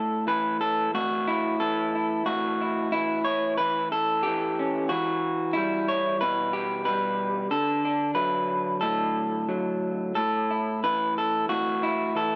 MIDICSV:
0, 0, Header, 1, 2, 480
1, 0, Start_track
1, 0, Tempo, 662252
1, 1648, Time_signature, 4, 2, 24, 8
1, 3081, Tempo, 651466
1, 5961, Tempo, 665188
1, 8989, End_track
2, 0, Start_track
2, 0, Title_t, "Clean electric guitar"
2, 0, Program_c, 0, 27
2, 0, Note_on_c, 0, 45, 54
2, 0, Note_on_c, 0, 57, 39
2, 0, Note_on_c, 0, 69, 76
2, 196, Note_on_c, 0, 52, 48
2, 199, Note_off_c, 0, 69, 0
2, 202, Note_on_c, 0, 71, 76
2, 438, Note_off_c, 0, 71, 0
2, 441, Note_on_c, 0, 69, 79
2, 680, Note_off_c, 0, 45, 0
2, 682, Note_on_c, 0, 45, 51
2, 683, Note_off_c, 0, 69, 0
2, 687, Note_on_c, 0, 66, 72
2, 924, Note_on_c, 0, 64, 78
2, 1156, Note_off_c, 0, 66, 0
2, 1159, Note_on_c, 0, 69, 70
2, 1161, Note_off_c, 0, 52, 0
2, 1164, Note_on_c, 0, 52, 49
2, 1404, Note_off_c, 0, 64, 0
2, 1413, Note_on_c, 0, 64, 40
2, 1619, Note_off_c, 0, 45, 0
2, 1634, Note_off_c, 0, 69, 0
2, 1637, Note_on_c, 0, 66, 77
2, 1643, Note_on_c, 0, 45, 56
2, 1648, Note_off_c, 0, 57, 0
2, 1659, Note_off_c, 0, 64, 0
2, 1894, Note_on_c, 0, 64, 36
2, 2115, Note_off_c, 0, 64, 0
2, 2118, Note_on_c, 0, 64, 74
2, 2128, Note_off_c, 0, 52, 0
2, 2131, Note_on_c, 0, 52, 55
2, 2349, Note_off_c, 0, 66, 0
2, 2352, Note_on_c, 0, 73, 91
2, 2589, Note_off_c, 0, 73, 0
2, 2592, Note_on_c, 0, 71, 93
2, 2599, Note_off_c, 0, 52, 0
2, 2608, Note_on_c, 0, 52, 53
2, 2836, Note_off_c, 0, 71, 0
2, 2838, Note_off_c, 0, 64, 0
2, 2841, Note_on_c, 0, 69, 85
2, 3065, Note_on_c, 0, 67, 77
2, 3084, Note_off_c, 0, 52, 0
2, 3093, Note_on_c, 0, 52, 50
2, 3333, Note_on_c, 0, 61, 41
2, 3532, Note_off_c, 0, 45, 0
2, 3540, Note_off_c, 0, 61, 0
2, 3550, Note_off_c, 0, 69, 0
2, 3553, Note_on_c, 0, 66, 81
2, 3555, Note_off_c, 0, 67, 0
2, 3556, Note_off_c, 0, 52, 0
2, 3565, Note_on_c, 0, 52, 61
2, 4025, Note_on_c, 0, 64, 80
2, 4050, Note_on_c, 0, 55, 56
2, 4279, Note_off_c, 0, 66, 0
2, 4284, Note_on_c, 0, 73, 83
2, 4520, Note_off_c, 0, 73, 0
2, 4523, Note_on_c, 0, 71, 89
2, 4533, Note_on_c, 0, 47, 58
2, 4752, Note_off_c, 0, 64, 0
2, 4761, Note_on_c, 0, 67, 78
2, 4989, Note_off_c, 0, 71, 0
2, 4998, Note_on_c, 0, 71, 76
2, 5004, Note_off_c, 0, 55, 0
2, 5019, Note_on_c, 0, 55, 47
2, 5452, Note_off_c, 0, 52, 0
2, 5457, Note_off_c, 0, 47, 0
2, 5461, Note_off_c, 0, 55, 0
2, 5479, Note_off_c, 0, 71, 0
2, 5480, Note_off_c, 0, 67, 0
2, 5482, Note_on_c, 0, 50, 60
2, 5482, Note_on_c, 0, 69, 80
2, 5733, Note_on_c, 0, 62, 36
2, 5949, Note_off_c, 0, 69, 0
2, 5952, Note_on_c, 0, 71, 69
2, 5959, Note_on_c, 0, 54, 48
2, 6426, Note_off_c, 0, 71, 0
2, 6429, Note_on_c, 0, 69, 68
2, 6441, Note_on_c, 0, 45, 54
2, 6910, Note_off_c, 0, 54, 0
2, 6919, Note_on_c, 0, 54, 49
2, 7378, Note_off_c, 0, 54, 0
2, 7382, Note_off_c, 0, 45, 0
2, 7382, Note_off_c, 0, 50, 0
2, 7387, Note_off_c, 0, 62, 0
2, 7391, Note_off_c, 0, 69, 0
2, 7400, Note_on_c, 0, 69, 75
2, 7408, Note_on_c, 0, 45, 56
2, 7654, Note_on_c, 0, 64, 35
2, 7887, Note_off_c, 0, 69, 0
2, 7894, Note_on_c, 0, 52, 50
2, 7894, Note_on_c, 0, 71, 83
2, 8133, Note_off_c, 0, 71, 0
2, 8140, Note_on_c, 0, 69, 73
2, 8363, Note_off_c, 0, 69, 0
2, 8366, Note_on_c, 0, 66, 80
2, 8370, Note_off_c, 0, 45, 0
2, 8373, Note_on_c, 0, 45, 56
2, 8607, Note_off_c, 0, 64, 0
2, 8610, Note_on_c, 0, 64, 72
2, 8839, Note_off_c, 0, 52, 0
2, 8841, Note_off_c, 0, 66, 0
2, 8842, Note_on_c, 0, 52, 45
2, 8851, Note_on_c, 0, 69, 70
2, 8989, Note_off_c, 0, 45, 0
2, 8989, Note_off_c, 0, 52, 0
2, 8989, Note_off_c, 0, 64, 0
2, 8989, Note_off_c, 0, 69, 0
2, 8989, End_track
0, 0, End_of_file